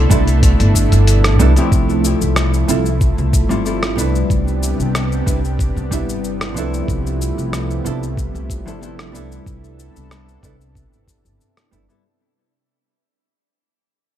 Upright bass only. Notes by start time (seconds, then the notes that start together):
0.11 C2
0.60 G1
0.92 G1
1.40 C2
1.72 C2
2.22 C2
2.69 C2
3.18 C2
3.51 G1
3.99 C2
4.30 C2
4.80 C2
5.27 C2
5.76 C2
6.09 G1
6.57 C2
6.88 C2
7.38 C2
7.85 C2
8.35 C2
8.67 G1
9.15 C2
9.46 C2
9.96 C2
10.43 C2
10.93 G1
11.25 G1
11.72 G1